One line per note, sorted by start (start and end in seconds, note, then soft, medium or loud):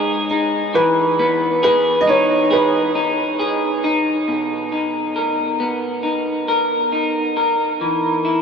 0.00 0.75 G#2 medium
0.00 1.16 B3 medium
0.00 0.30 D#4 medium
0.00 1.63 G#4 medium
0.00 0.26 D#5 medium
0.31 2.07 D#4 medium
0.74 4.27 E3 medium
0.74 1.63 B4 loud
1.19 4.69 B3 medium
1.63 2.49 G#4 medium
1.63 2.02 B4 medium
2.01 2.07 D#5 medium
2.07 2.95 D#4 medium
2.07 2.53 C#5 medium
2.51 3.38 G#4 medium
2.51 3.36 B4 medium
2.95 3.84 D#4 medium
3.40 4.37 G#4 medium
3.84 4.72 D#4 medium
4.28 7.81 B2 medium
4.72 6.02 D#4 medium
5.16 6.47 A#4 medium
5.60 8.42 B3 medium
6.03 6.91 D#4 soft
6.48 7.36 A#4 medium
6.93 7.90 D#4 soft
7.37 7.90 A#4 medium
7.81 8.42 E3 medium
8.25 8.42 E4 medium